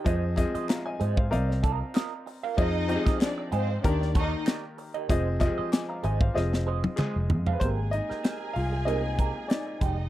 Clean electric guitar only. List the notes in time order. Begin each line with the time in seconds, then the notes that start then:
0.06 G#4 C5 D#5
0.38 muted clean electric guitar stroke
0.55 G#4 C5 D#5
0.86 muted clean electric guitar stroke
1.00 G#4 C5 D#5
1.17 muted clean electric guitar stroke
1.32 muted clean electric guitar stroke
1.49 muted clean electric guitar stroke
1.63 F4 A#4 D#5
1.81 muted clean electric guitar stroke
1.94 F4 A#4 D#5
2.26 muted clean electric guitar stroke
2.43 F4 A#4 F5
2.58 F4 G#4 D#5
2.89 muted clean electric guitar stroke
3.06 F4 G#4 D#5
3.38 muted clean electric guitar stroke
3.52 F4 G#4 D#5
3.69 muted clean electric guitar stroke
3.84 muted clean electric guitar stroke
4.01 muted clean electric guitar stroke
4.15 G4 A#4 D5
4.32 muted clean electric guitar stroke
4.46 G4 A#4 D5
4.78 muted clean electric guitar stroke
4.94 G4 A#4 D#5
5.09 G#4 C5 D#5
5.41 muted clean electric guitar stroke
5.58 G#4 C5 D#5
5.90 muted clean electric guitar stroke
6.03 G#4 C5 D#5
6.21 muted clean electric guitar stroke
6.36 muted clean electric guitar stroke
6.53 muted clean electric guitar stroke
6.67 G#4 C5 D#5
6.84 muted clean electric guitar stroke
6.98 G#4 C5 D#5
7.30 muted clean electric guitar stroke
7.47 G#4 C5 F5
7.61 C4 G4 A#4
7.92 muted clean electric guitar stroke
8.09 C4 G4 A#4
8.24 C4 G4 A#4
8.56 muted clean electric guitar stroke
8.72 muted clean electric guitar stroke
8.86 C4 G4 A#4
9.18 C4 G4 A#4
9.36 muted clean electric guitar stroke
9.49 muted clean electric guitar stroke
9.67 muted clean electric guitar stroke
9.81 G#3 D#4 G4
9.98 muted clean electric guitar stroke